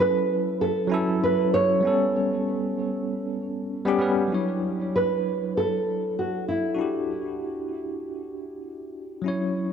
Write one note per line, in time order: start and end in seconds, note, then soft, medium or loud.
0.00 0.86 F#3 medium
0.00 0.87 C#4 medium
0.00 0.88 E4 medium
0.00 0.89 A4 medium
0.00 0.61 B4 loud
0.61 1.19 A4 medium
0.88 1.79 F#3 medium
0.88 1.80 C#4 medium
0.92 1.81 E4 medium
0.92 1.82 A4 loud
1.23 1.53 B4 medium
1.54 3.66 C#5 loud
1.80 3.34 G3 medium
1.80 3.35 B3 medium
1.85 3.36 C#4 medium
1.85 3.37 A4 medium
3.85 3.96 G3 loud
3.85 3.96 B3 medium
3.85 3.97 C#4 medium
3.85 3.98 G4 loud
3.99 4.27 G3 medium
3.99 4.28 B3 medium
3.99 4.28 C#4 medium
3.99 4.29 B4 medium
4.28 6.74 F#3 medium
4.28 6.75 D4 medium
4.32 6.76 E4 medium
4.32 6.77 C#5 medium
4.96 5.57 B4 medium
5.57 6.20 A4 medium
6.19 6.47 F#4 medium
6.49 8.30 E4 medium
6.75 9.22 D4 medium
6.75 9.21 F#4 medium
6.79 9.23 E4 medium
6.79 9.24 G4 medium
9.22 9.73 F#3 medium
9.22 9.73 C#4 medium
9.26 9.73 E4 medium
9.26 9.73 C#5 medium